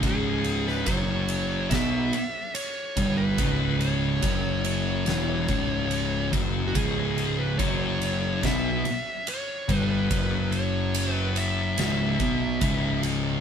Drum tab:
RD |x-x-x-x-x-x-x-x-|x-x-x-x-x-x-x-x-|x-x-x-x-x-x-x-x-|x-x-x-x-x-x-x-x-|
SD |---o----o-------|--------o-------|--------o-------|--------o-------|
BD |o---o---o-----o-|o---o-----o---o-|o---o---o-----o-|o---------o-o---|